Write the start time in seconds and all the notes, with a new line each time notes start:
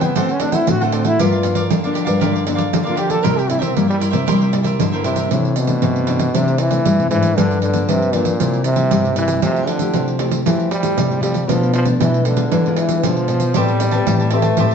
Already playing: E3 G3 C4 E4
0.01 C#3 B3 C5 E5 G5, pandeiro
0.15 D3 A3 C4 D4 F#4 A4 C5 F#5, pandeiro
0.29 C#4 A4 C5 F#5, pandeiro
0.40 A3 C4 D4 F#4, muted cavaquinho stroke, pandeiro
0.51 E4 A4 C5 F#5, pandeiro
0.67 A2 D3 F#4, pandeiro
0.81 A3 C4 F#4 A4 C5 F#5, pandeiro
0.92 C4 D4 A4 C5 F#5, pandeiro
1.04 E4 A4 C5 F#5, pandeiro
1.19 G2 F3 A#3 D4 F4 G4 A#4 D5 F5, pandeiro
1.32 A#4 D5 F5, pandeiro
1.43 F3 A#3 D4, muted cavaquinho stroke, pandeiro
1.55 A#4 D5 F5, pandeiro
1.70 D3, pandeiro
1.83 F3 A#3 D4 A#4 D5 F5, pandeiro
1.93 G4 A#4 D5 F5, pandeiro
2.05 G2 A#4 D5 F5, pandeiro
2.19 G2 D3 F3 A#3 D4 G4 A#4 D5 F5, pandeiro
2.33 A#4 D5 F5, pandeiro
2.44 F3 A#3, muted cavaquinho stroke, pandeiro
2.48 D4
2.55 A#4 D5 F5, pandeiro
2.73 D3, pandeiro
2.83 A#4 D5 F5, pandeiro
2.88 F3 A#3 D4 F4
2.95 G4 A#4 D5 F5, pandeiro
3.07 A4 A#4 D5 F5, pandeiro
3.22 C3 G3 A#3 E4 A#4 C5 E5, pandeiro
3.27 E4
3.36 G4 A#4 C5 E5, pandeiro
3.47 G3 E4, muted cavaquinho stroke, pandeiro
3.51 A#3 E4
3.59 C4 A#4 C5 E5, pandeiro
3.76 G2 G3 A#3, pandeiro
3.88 G3 A#3 E4 A#4 C5 E5, pandeiro
4.00 E4 A#4 C5 E5, pandeiro
4.11 C3 G3 A#3 E4 A#4 C5 E5, pandeiro
4.26 C3 G3 A#3 E4 A#4 C5 E5, pandeiro
4.41 A#4 C5 E5, pandeiro
4.52 G3 A#3 E4, muted cavaquinho stroke, pandeiro
4.63 A#4 C5 E5, pandeiro
4.79 G2 D3, pandeiro
4.92 G3 A#3 E4 A#4 C5 E5, pandeiro
5.04 C3 E4 A#4 C5 E5, pandeiro
5.16 A#4 C5 E5, pandeiro
5.31 A2 C3 E3 A3 D4, pandeiro
5.45 pandeiro
5.56 B2, pandeiro
5.67 E3 A3 D4, pandeiro
5.81 G2 C3, pandeiro
5.96 pandeiro
6.07 E3 A3 D4, pandeiro
6.19 pandeiro
6.33 C3 E3 A3 D4, pandeiro
6.48 pandeiro
6.58 E3, pandeiro
6.70 E3 A3 D4, pandeiro
6.85 G2 G3, pandeiro
6.99 C3, pandeiro
7.10 G#2 E3 A3 D4, pandeiro
7.23 pandeiro
7.36 G2 D3 F3 A#3 D4, pandeiro
7.51 pandeiro
7.62 D3, pandeiro
7.74 F3 A#3 D4, pandeiro
7.88 G2 C3 D3, pandeiro
8.02 pandeiro
8.13 A#2 F3 A#3 D4, pandeiro
8.25 pandeiro
8.40 C3 G3 A#3 E4, pandeiro
8.53 pandeiro
8.64 C3, pandeiro
8.76 G3 A#3 E4, pandeiro
8.91 G2 G3, pandeiro
9.04 C3, pandeiro
9.16 C3 E3 G3 A#3 E4, pandeiro
9.28 pandeiro
9.42 C3 F3 A3 E4 G4, pandeiro
9.56 pandeiro
9.67 D3, pandeiro
9.79 A3 E4 G4, pandeiro
9.94 C3 F3, pandeiro
10.08 pandeiro
10.19 A3 E4 G4, pandeiro
10.31 pandeiro
10.45 E3 F3 A3 E4 G4, pandeiro
10.60 pandeiro
10.71 G3, pandeiro
10.82 A3 E4 G4, pandeiro
10.97 C3, pandeiro
11.10 F3, pandeiro
11.21 F3 G3 A3 E4 G4, pandeiro
11.34 pandeiro
11.48 B2 F3 A3 D4, pandeiro
11.63 pandeiro
11.74 F3, pandeiro
11.85 F3 A3 D4, pandeiro
12.00 B2 E3, pandeiro
12.14 pandeiro
12.25 D3 F3 A3 D4, pandeiro
12.36 G#3 D4 F4, pandeiro
12.51 E3, pandeiro
12.66 G#3 D4 F4, pandeiro
12.77 E3, pandeiro
12.89 pandeiro
13.03 B2 D3 F3 G#3 D4 F4, pandeiro
13.17 pandeiro
13.28 B2, pandeiro
13.40 pandeiro
13.54 A2 G3 A3 C4 G4 B4 C5 E5 A5, pandeiro
13.68 C5 E5 A5, pandeiro
13.80 muted cavaquinho stroke, pandeiro
13.91 C4 G4 B4 C5 E5 A5, pandeiro
14.07 A2 E3, pandeiro
14.20 C5 E5 A5, pandeiro
14.31 A3 C4 G4 B4 C5 E5 A5, pandeiro
14.42 C5 E5 A5, pandeiro
14.57 A2 A3 C4 G4 B4 C5 E5 A5, pandeiro
14.71 pandeiro